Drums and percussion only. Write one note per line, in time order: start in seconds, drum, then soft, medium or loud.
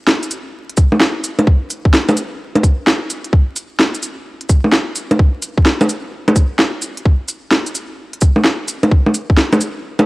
0.07 snare loud
0.23 closed hi-hat soft
0.23 cabasa soft
0.31 closed hi-hat medium
0.31 cabasa medium
0.69 closed hi-hat soft
0.77 kick loud
0.77 closed hi-hat medium
0.77 cabasa medium
0.92 low bongo soft
1.00 snare loud
1.24 closed hi-hat medium
1.24 cabasa medium
1.39 closed hi-hat soft
1.39 low bongo medium
1.47 kick loud
1.70 closed hi-hat medium
1.70 cabasa medium
1.85 kick loud
1.94 snare loud
2.09 closed hi-hat soft
2.09 low bongo medium
2.09 cabasa soft
2.17 closed hi-hat medium
2.17 cabasa medium
2.55 closed hi-hat soft
2.55 low bongo medium
2.63 kick loud
2.63 closed hi-hat medium
2.63 cabasa medium
2.87 snare loud
3.10 closed hi-hat medium
3.10 cabasa medium
3.24 closed hi-hat soft
3.33 kick loud
3.56 closed hi-hat medium
3.56 cabasa medium
3.80 snare loud
3.95 closed hi-hat soft
3.95 cabasa soft
4.03 closed hi-hat medium
4.03 cabasa medium
4.41 closed hi-hat soft
4.49 kick loud
4.49 closed hi-hat medium
4.49 cabasa medium
4.64 low bongo soft
4.72 snare loud
4.96 closed hi-hat medium
4.96 cabasa medium
5.11 closed hi-hat soft
5.11 low bongo medium
5.19 kick loud
5.42 closed hi-hat medium
5.42 cabasa medium
5.58 kick loud
5.66 snare loud
5.81 closed hi-hat soft
5.81 low bongo medium
5.81 cabasa soft
5.89 closed hi-hat medium
5.89 cabasa medium
6.28 closed hi-hat soft
6.28 low bongo medium
6.36 kick loud
6.36 closed hi-hat medium
6.36 cabasa medium
6.59 snare loud
6.82 closed hi-hat medium
6.82 cabasa medium
6.97 closed hi-hat soft
7.06 kick loud
7.28 closed hi-hat medium
7.28 cabasa medium
7.51 snare loud
7.66 closed hi-hat soft
7.66 cabasa soft
7.75 closed hi-hat medium
7.75 cabasa medium
8.13 closed hi-hat soft
8.21 kick loud
8.21 closed hi-hat medium
8.21 cabasa medium
8.36 low bongo soft
8.44 snare loud
8.68 closed hi-hat medium
8.68 cabasa medium
8.83 closed hi-hat soft
8.83 low bongo medium
8.91 kick loud
9.06 low bongo soft
9.14 closed hi-hat medium
9.14 cabasa medium
9.30 kick loud
9.37 snare loud
9.53 closed hi-hat soft
9.53 low bongo medium
9.53 cabasa soft
9.61 closed hi-hat medium
9.61 cabasa medium
9.99 closed hi-hat soft
9.99 low bongo medium